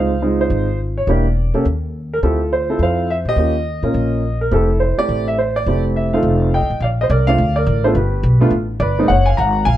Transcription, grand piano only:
0.00 0.10 C4 soft
0.00 0.10 F4 medium
0.00 0.39 C5 medium
0.00 0.20 F5 medium
0.22 0.65 G#3 medium
0.22 0.65 C4 medium
0.22 0.65 D#4 medium
0.22 0.40 F4 medium
0.41 0.94 F4 medium
0.41 0.77 C5 medium
0.98 1.09 C#5 medium
1.08 1.24 A#3 medium
1.08 1.24 D4 medium
1.08 1.24 E4 medium
1.08 1.25 G4 medium
1.08 1.63 D5 medium
1.54 1.64 A#3 medium
1.54 1.64 C#4 medium
1.54 1.64 G4 medium
1.54 1.64 A4 medium
2.13 2.18 A#4 medium
2.23 2.39 C4 soft
2.23 2.39 E4 soft
2.23 2.68 F4 medium
2.23 2.39 G4 medium
2.23 2.52 A4 medium
2.53 2.79 C5 medium
2.69 3.07 C4 medium
2.69 3.07 E4 soft
2.69 3.07 F4 medium
2.69 3.07 A4 medium
2.83 3.35 C5 medium
2.83 3.11 F5 medium
3.10 3.15 E5 medium
3.29 3.37 G4 medium
3.29 4.38 D#5 loud
3.38 3.53 A#3 medium
3.38 3.54 C#4 soft
3.38 3.54 F4 soft
3.38 3.54 G4 medium
3.84 4.21 A#3 medium
3.84 4.21 C#4 soft
3.84 4.21 F4 soft
3.84 4.22 A#4 medium
4.41 4.52 A#4 medium
4.51 4.67 A3 medium
4.51 4.68 C4 soft
4.51 4.54 E4 soft
4.51 4.68 G4 medium
4.51 4.82 A4 medium
4.55 4.97 E4 medium
4.80 4.98 C5 medium
4.98 5.35 A3 medium
4.98 5.36 C4 soft
4.98 5.35 E4 soft
4.98 5.36 G4 medium
4.98 5.25 D5 loud
5.28 5.38 E5 medium
5.38 5.56 C5 medium
5.56 5.82 D5 medium
5.67 6.10 A3 medium
5.67 6.09 C4 medium
5.67 6.10 E4 soft
5.67 6.10 G4 medium
5.96 6.14 E5 medium
6.13 6.50 A3 medium
6.13 6.51 C4 medium
6.13 6.51 D#4 medium
6.13 6.51 F4 medium
6.13 6.68 A4 medium
6.13 6.66 F5 medium
6.54 6.81 D#5 medium
6.54 6.83 G5 medium
6.82 6.89 D5 medium
6.82 6.87 F5 medium
7.01 7.07 C5 medium
7.01 7.05 D#5 medium
7.11 7.27 A#4 medium
7.11 7.27 D5 medium
7.27 7.37 A3 medium
7.27 7.38 C4 medium
7.27 7.37 D4 medium
7.27 7.38 F4 medium
7.27 7.54 D5 medium
7.27 7.54 F5 loud
7.56 7.84 A#4 medium
7.56 7.82 D5 medium
7.84 7.94 A3 medium
7.84 7.94 B3 medium
7.84 7.95 D4 medium
7.84 7.95 F4 medium
7.84 7.91 A4 medium
7.84 7.89 C5 medium
7.96 8.50 G4 medium
7.96 8.49 B4 medium
8.41 8.51 A3 medium
8.41 8.51 B3 medium
8.41 8.51 D4 medium
8.41 8.51 F4 medium
8.80 9.08 B4 medium
8.80 9.10 D5 medium
8.99 9.09 G#3 medium
8.99 9.09 A#3 medium
8.99 9.09 C4 medium
8.99 9.09 D#4 medium
9.08 9.27 C#5 medium
9.08 9.27 F#5 medium
9.26 9.38 F5 medium
9.26 9.38 G#5 medium
9.37 9.66 F#5 medium
9.37 9.64 A#5 medium
9.65 9.77 F5 medium
9.65 9.77 G#5 loud

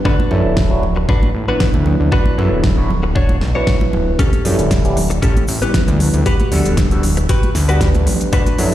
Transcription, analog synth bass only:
0.05 0.17 D2 loud
0.31 0.43 F#2 medium
0.45 1.05 D1 medium
1.09 1.30 A1 medium
1.35 1.46 A1 medium
1.74 1.95 D2 loud
2.00 2.10 D2 medium
2.38 2.50 F#2 medium
2.52 3.43 D1 medium
3.42 3.53 B1 medium
3.93 4.15 D1 medium
4.19 4.30 D2 medium
4.45 4.56 F#2 medium
4.59 5.19 D1 medium
5.22 5.44 A1 loud
5.48 5.60 A1 medium
5.88 6.09 D2 loud
6.14 6.24 D2 medium
6.52 6.63 D2 medium
6.66 7.26 D1 medium
7.55 8.08 D2 medium
8.07 8.29 A1 medium
8.33 8.44 D2 loud
8.58 8.70 F#2 medium

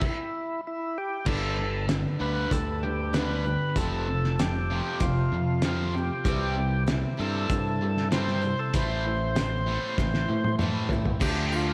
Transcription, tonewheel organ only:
0.00 0.61 E4 medium
0.67 0.98 E4 medium
0.98 1.26 G4 medium
1.28 1.86 A4 medium
2.21 2.53 B4 medium
2.52 2.84 A4 medium
2.83 3.15 G4 medium
3.14 3.78 B4 medium
3.77 4.41 A4 medium
4.40 5.03 G4 medium
5.02 5.62 F4 medium
5.63 5.95 F4 medium
5.94 6.84 G4 medium
7.20 8.09 A4 medium
8.13 8.60 C5 loud
8.59 8.75 A4 medium
8.73 10.56 C5 medium
11.22 11.54 G4 medium
11.56 11.73 F4 medium

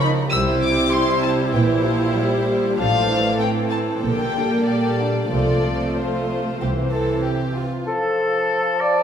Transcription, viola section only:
0.00 0.33 F3 soft
0.00 0.10 D#4 soft
0.32 1.52 G3 medium
0.32 0.91 E4 soft
0.93 2.74 E4 medium
1.54 1.85 E3 medium
1.85 2.16 F3 medium
2.16 2.45 G3 medium
2.46 2.77 G3 soft
2.78 3.09 F3 soft
2.78 3.38 D4 soft
3.09 4.01 E3 soft
3.40 4.03 C4 soft
4.04 4.35 D3 soft
4.04 5.31 A#3 medium
4.36 5.31 G3 soft
5.32 6.58 F3 soft
5.32 6.58 A3 soft
6.60 7.68 E3 soft
6.60 7.68 C4 soft

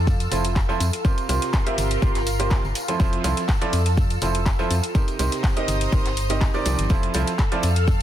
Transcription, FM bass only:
0.00 0.28 F2 medium
0.32 0.76 F1 medium
0.80 0.90 F2 medium
1.29 1.39 C2 medium
1.78 1.97 G1 medium
2.02 2.60 G1 medium
2.64 2.73 G1 medium
3.00 3.19 F1 loud
3.24 3.34 C2 medium
3.73 4.18 F2 medium
4.22 4.67 F1 medium
4.71 4.81 F2 medium
5.19 5.29 C2 medium
5.68 5.88 G1 medium
5.92 6.50 G1 medium
6.66 6.76 C2 medium
6.79 6.88 G1 medium
6.90 7.10 F1 loud
7.15 7.25 C2 medium
7.63 8.02 F2 medium

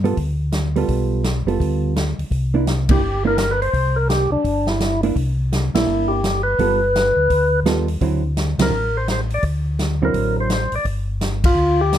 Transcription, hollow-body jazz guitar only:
0.04 0.16 G3 medium
0.04 0.16 B3 medium
0.04 0.16 F4 medium
0.04 0.16 A4 medium
0.76 1.22 G3 medium
0.76 1.22 B3 medium
0.76 1.22 F4 medium
0.76 1.22 A4 medium
1.47 1.93 G3 soft
1.47 1.93 B3 soft
1.47 1.93 F4 medium
1.47 1.94 A4 medium
2.54 2.65 A#3 soft
2.54 2.66 D4 medium
2.54 2.66 E4 medium
2.90 3.01 A#3 soft
2.90 3.02 D4 medium
2.90 3.02 E4 medium
3.25 3.36 A#3 medium
3.25 3.37 D4 medium
3.25 3.37 E4 medium
5.03 5.15 A#3 soft
5.03 5.15 D4 medium
5.03 5.15 E4 medium
5.75 6.21 A#3 medium
5.75 6.21 D4 medium
5.75 6.21 E4 medium
6.59 6.80 G3 soft
6.59 6.79 B3 soft
6.59 6.80 F4 medium
6.59 6.80 A4 medium
7.66 7.86 G3 medium
7.66 7.86 B3 medium
7.66 7.86 F4 medium
7.66 7.86 A4 medium
8.01 8.21 D3 soft
8.01 8.22 F#3 medium
8.01 8.22 C4 soft
8.01 8.22 E4 medium
8.60 8.71 D3 soft
8.60 8.71 F#3 soft
8.60 8.71 C4 medium
8.60 8.72 E4 medium
10.02 10.48 D3 soft
10.02 10.48 F#3 medium
10.02 10.48 C4 medium
10.02 10.48 E4 medium

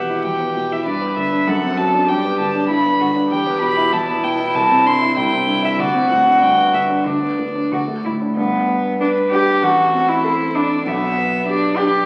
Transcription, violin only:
0.00 0.25 F#5 medium
0.25 0.74 G5 medium
0.73 0.85 E5 medium
0.86 1.16 D5 medium
1.18 1.50 E5 medium
1.48 1.79 F#5 medium
1.78 2.10 A5 medium
2.09 2.39 G5 medium
2.39 2.69 A5 medium
2.70 3.15 B5 medium
3.32 3.60 G5 medium
3.62 3.94 B5 medium
3.93 4.25 A5 medium
4.24 4.57 G5 medium
4.55 4.88 A5 medium
4.87 5.17 C6 medium
5.18 5.67 G5 medium
5.66 5.81 E5 medium
5.80 6.10 D5 medium
6.11 6.41 F#5 medium
6.41 6.73 G5 medium
6.74 6.82 E5 medium
7.06 8.03 D5 medium
9.01 9.59 B4 medium
9.63 10.27 A4 medium
10.25 10.56 C5 medium
10.57 10.90 D5 medium
10.88 11.48 E5 medium
11.49 12.06 D5 medium

